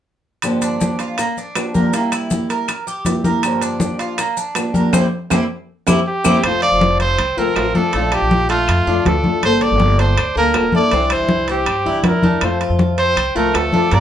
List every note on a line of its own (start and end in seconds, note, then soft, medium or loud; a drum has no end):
0.42 0.80 G2 medium
0.42 0.80 D3 medium
0.42 0.79 F3 medium
0.42 0.79 A#3 medium
0.42 0.80 D4 medium
0.42 0.81 G4 medium
0.42 high conga soft
0.42 high timbale medium
0.42 claves medium
0.42 maracas medium
0.62 0.98 D4 medium
0.62 high conga soft
0.62 high timbale medium
0.62 maracas medium
0.80 1.17 F3 soft
0.80 1.18 A#3 soft
0.80 1.18 D4 soft
0.80 1.18 G4 soft
0.80 high conga medium
0.80 low timbale medium
0.80 maracas medium
0.99 1.18 F4 medium
0.99 high conga soft
0.99 high timbale medium
0.99 maracas soft
1.18 1.37 A#3 medium
1.18 muted nylon-string guitar stroke medium
1.18 high conga soft
1.18 high timbale medium
1.18 claves medium
1.18 maracas medium
1.37 1.74 D4 medium
1.37 high conga soft
1.37 maracas soft
1.55 1.74 F3 soft
1.55 1.74 A#3 medium
1.55 1.74 D4 soft
1.55 1.74 G4 soft
1.55 high conga soft
1.55 high timbale medium
1.55 low timbale medium
1.55 claves medium
1.55 maracas medium
1.74 1.93 D3 soft
1.74 1.94 F3 medium
1.74 1.93 A#3 medium
1.74 1.93 D4 medium
1.74 1.93 G4 medium
1.74 1.93 A#4 medium
1.74 high conga medium
1.74 maracas soft
1.93 2.30 C3 medium
1.93 2.29 G3 medium
1.93 2.12 A#3 medium
1.93 2.30 A#3 medium
1.93 2.31 E4 medium
1.93 2.31 G4 medium
1.93 high timbale medium
1.93 maracas medium
2.12 2.49 E4 medium
2.12 high conga soft
2.12 high timbale medium
2.12 claves medium
2.12 maracas medium
2.30 2.67 G3 soft
2.30 2.68 A#3 soft
2.30 2.68 E4 soft
2.30 2.68 G4 soft
2.30 high conga medium
2.30 low timbale medium
2.30 maracas medium
2.50 2.86 A#4 medium
2.50 high conga soft
2.50 high timbale medium
2.50 maracas soft
2.68 muted nylon-string guitar stroke medium
2.68 high conga soft
2.68 high timbale medium
2.68 claves medium
2.68 maracas medium
2.87 3.23 G4 medium
2.87 high conga soft
2.87 maracas medium
3.05 3.24 G3 soft
3.05 3.24 A#3 medium
3.05 3.24 E4 medium
3.05 3.23 G4 medium
3.05 high conga medium
3.05 high timbale medium
3.05 low timbale medium
3.05 maracas medium
3.24 3.44 G3 medium
3.24 3.43 A#3 medium
3.24 3.43 E4 medium
3.24 3.42 G4 medium
3.24 3.61 A#4 medium
3.24 high conga medium
3.24 maracas soft
3.43 3.80 G2 medium
3.43 3.80 D3 medium
3.43 3.79 F3 medium
3.43 3.80 A#3 medium
3.43 3.80 D4 medium
3.43 3.81 G4 medium
3.43 high conga soft
3.43 high timbale medium
3.43 claves medium
3.43 maracas medium
3.62 3.98 D4 medium
3.62 high conga soft
3.62 high timbale medium
3.62 maracas medium
3.80 4.17 F3 soft
3.80 4.18 A#3 soft
3.80 4.18 D4 soft
3.80 4.18 G4 soft
3.80 high conga medium
3.80 low timbale medium
3.80 maracas medium
3.99 4.18 F4 medium
3.99 high conga soft
3.99 high timbale medium
3.99 maracas soft
4.18 4.36 A#3 medium
4.18 muted nylon-string guitar stroke medium
4.18 high conga soft
4.18 high timbale medium
4.18 claves medium
4.18 maracas medium
4.37 4.73 D4 medium
4.37 high conga soft
4.37 maracas medium
4.55 4.74 F3 soft
4.55 4.74 A#3 soft
4.55 4.73 D4 soft
4.55 4.73 G4 soft
4.55 high conga soft
4.55 high timbale medium
4.55 low timbale medium
4.55 claves medium
4.55 maracas medium
4.74 4.93 D3 soft
4.74 4.92 F3 medium
4.74 4.92 A#3 medium
4.74 4.93 D4 medium
4.74 4.92 G4 medium
4.74 4.93 A#4 medium
4.74 high conga medium
4.74 maracas soft
4.93 5.05 G3 medium
4.93 5.05 A#3 medium
4.93 5.05 C4 medium
4.93 5.05 E4 medium
4.93 5.06 G4 medium
4.93 high conga medium
4.93 high timbale loud
4.93 claves medium
4.93 maracas medium
5.30 5.43 G3 medium
5.30 5.43 A#3 medium
5.30 5.43 C4 medium
5.30 5.43 E4 medium
5.30 5.43 G4 medium
5.30 high conga medium
5.30 high timbale medium
5.30 claves medium
5.30 maracas medium
5.87 5.99 G3 medium
5.87 5.99 A#3 medium
5.87 5.99 C4 medium
5.87 5.99 E4 medium
5.87 5.99 G4 medium
5.87 high conga medium
5.87 high timbale medium
5.87 claves medium
5.87 maracas medium
6.07 6.46 G4 medium
6.25 6.37 G3 medium
6.25 6.37 A#3 medium
6.25 6.37 C4 medium
6.25 6.37 E4 medium
6.25 6.37 G4 medium
6.25 high conga medium
6.25 high timbale medium
6.25 claves medium
6.25 maracas medium
6.43 6.70 F1 loud
6.43 7.18 C3 medium
6.43 7.18 F3 medium
6.43 7.19 A3 medium
6.43 7.18 C4 medium
6.43 7.19 F4 medium
6.43 6.62 C5 loud
6.43 high timbale medium
6.43 claves medium
6.62 6.99 F4 medium
6.62 6.97 D5 loud
6.62 high conga soft
6.62 high timbale medium
6.72 7.16 F1 medium
6.81 high conga medium
6.81 low timbale medium
7.00 7.36 C4 medium
7.00 7.40 C5 medium
7.00 high conga soft
7.00 high timbale medium
7.18 7.36 C2 medium
7.18 muted nylon-string guitar stroke medium
7.18 high conga soft
7.18 high timbale medium
7.18 claves medium
7.37 7.55 C2 medium
7.37 7.55 F3 medium
7.37 7.56 A3 medium
7.37 7.74 C4 medium
7.37 7.55 C4 medium
7.37 7.55 F4 medium
7.37 7.77 A#4 medium
7.37 high conga soft
7.56 7.74 A1 medium
7.56 7.74 F3 medium
7.56 7.74 A3 medium
7.56 7.75 C4 soft
7.56 7.74 F4 medium
7.56 high conga soft
7.56 high timbale medium
7.56 low timbale medium
7.56 claves medium
7.75 7.93 F3 medium
7.75 7.93 A3 medium
7.75 7.93 C4 medium
7.75 7.93 D4 medium
7.75 7.93 F4 medium
7.75 8.15 A4 medium
7.75 high conga medium
7.93 8.20 A#1 loud
7.93 8.67 F3 medium
7.93 8.11 A3 medium
7.93 8.68 A3 medium
7.93 8.68 D4 medium
7.93 high conga soft
7.93 high timbale medium
7.97 8.68 F4 medium
8.12 8.48 D4 medium
8.12 8.50 G4 medium
8.12 high conga soft
8.12 high timbale medium
8.12 claves medium
8.22 8.66 A#1 medium
8.31 high conga medium
8.31 low timbale medium
8.49 8.85 A3 medium
8.49 9.08 F4 medium
8.49 high conga soft
8.49 high timbale medium
8.68 8.86 F2 medium
8.68 muted nylon-string guitar stroke medium
8.68 high conga soft
8.68 high timbale medium
8.68 claves medium
8.87 9.05 F2 medium
8.87 9.04 A3 medium
8.87 9.23 D4 medium
8.87 9.05 D4 medium
8.87 9.05 F4 medium
8.87 high conga soft
9.04 9.23 D2 medium
9.04 9.23 F3 soft
9.04 9.23 A3 soft
9.04 9.24 D4 soft
9.04 9.23 F4 medium
9.04 9.43 A4 medium
9.04 high conga medium
9.04 high timbale medium
9.04 low timbale medium
9.24 9.43 A3 medium
9.24 9.42 D4 medium
9.24 9.42 F4 medium
9.24 high conga medium
9.42 9.70 G1 loud
9.42 10.16 D3 medium
9.42 10.17 G3 medium
9.42 10.16 A#3 medium
9.42 10.18 D4 medium
9.42 10.17 A4 medium
9.42 9.64 C5 loud
9.42 high conga soft
9.42 high timbale medium
9.42 claves medium
9.61 9.98 G4 medium
9.61 10.01 D5 medium
9.61 high conga soft
9.61 high timbale medium
9.71 10.15 G1 loud
9.80 high conga medium
9.80 low timbale medium
9.99 10.35 D4 medium
9.99 10.37 C5 medium
9.99 high conga soft
9.99 high timbale medium
10.17 10.36 D2 medium
10.17 muted nylon-string guitar stroke medium
10.17 high conga soft
10.17 high timbale medium
10.17 claves medium
10.35 10.54 D2 medium
10.35 10.53 G3 soft
10.35 10.73 A#3 medium
10.35 10.54 A#3 medium
10.35 10.54 D4 medium
10.35 10.54 A4 medium
10.35 10.72 A#4 medium
10.35 high conga soft
10.54 10.73 E1 medium
10.54 10.73 G3 medium
10.54 10.73 A#3 medium
10.54 10.73 D4 soft
10.54 10.72 A4 medium
10.54 high conga soft
10.54 high timbale medium
10.54 low timbale medium
10.54 claves medium
10.72 10.92 G3 medium
10.72 10.92 A#3 medium
10.72 10.92 D4 medium
10.72 10.92 E4 medium
10.72 10.91 A4 medium
10.72 11.14 D5 medium
10.72 high conga medium
10.91 11.19 C2 medium
10.91 11.66 C3 medium
10.91 11.67 E3 medium
10.91 11.67 G3 medium
10.91 11.11 C4 medium
10.91 11.67 D4 medium
10.91 11.67 E4 medium
10.91 high conga soft
10.91 high timbale medium
11.10 11.48 E4 medium
11.10 11.49 C5 medium
11.10 high conga soft
11.10 high timbale medium
11.10 claves medium
11.20 11.65 C2 medium
11.29 high conga medium
11.29 low timbale medium
11.48 11.85 C4 medium
11.48 12.02 G4 medium
11.48 high conga soft
11.48 high timbale medium
11.66 11.85 G2 medium
11.66 muted nylon-string guitar stroke medium
11.66 high conga soft
11.66 high timbale medium
11.66 claves medium
11.85 12.03 C2 medium
11.85 12.03 E3 medium
11.85 12.03 G3 medium
11.85 12.04 D4 medium
11.85 12.04 E4 medium
11.85 12.22 E4 medium
11.85 high conga soft
12.03 12.22 D2 medium
12.03 12.22 E3 soft
12.03 12.22 G3 soft
12.03 12.22 D4 medium
12.03 12.21 E4 medium
12.03 12.45 A#4 medium
12.03 high conga medium
12.03 high timbale medium
12.03 low timbale medium
12.22 12.40 E2 medium
12.22 12.41 E3 medium
12.22 12.42 G3 medium
12.22 12.60 A3 medium
12.22 12.41 D4 medium
12.22 12.41 E4 medium
12.22 high conga medium
12.41 12.69 F2 loud
12.41 13.15 C3 medium
12.41 13.15 F3 medium
12.41 13.15 A3 medium
12.41 13.16 C4 medium
12.41 13.16 F4 medium
12.41 12.62 C5 medium
12.41 high conga soft
12.41 high timbale medium
12.41 claves medium
12.61 12.97 F4 medium
12.61 high conga soft
12.61 high timbale medium
12.70 13.14 F2 medium
12.79 high conga medium
12.79 low timbale medium
12.98 13.34 C4 medium
12.98 13.38 C5 loud
12.98 high timbale medium
13.16 13.34 C2 medium
13.16 muted nylon-string guitar stroke medium
13.16 high conga soft
13.16 high timbale medium
13.16 claves medium
13.35 13.53 C2 medium
13.35 13.52 F3 medium
13.35 13.72 A3 medium
13.35 13.53 A3 medium
13.35 13.54 C4 medium
13.35 13.53 F4 medium
13.35 13.57 A#4 medium
13.35 high conga soft
13.54 13.72 D2 medium
13.54 13.72 F3 soft
13.54 13.72 A3 soft
13.54 13.72 C4 soft
13.54 13.71 F4 medium
13.54 13.95 A4 loud
13.54 high conga soft
13.54 high timbale medium
13.54 low timbale medium
13.54 claves medium
13.73 13.91 F3 medium
13.73 13.92 A3 medium
13.73 13.91 C4 medium
13.73 13.91 D4 medium
13.73 13.91 F4 medium
13.73 high conga medium
13.91 14.00 G2 loud
13.91 14.00 D3 medium
13.91 14.00 G3 medium
13.91 14.00 A#3 medium
13.91 14.00 D4 medium
13.91 14.00 G4 medium
13.91 14.00 D5 medium
13.91 high conga soft
13.91 high timbale medium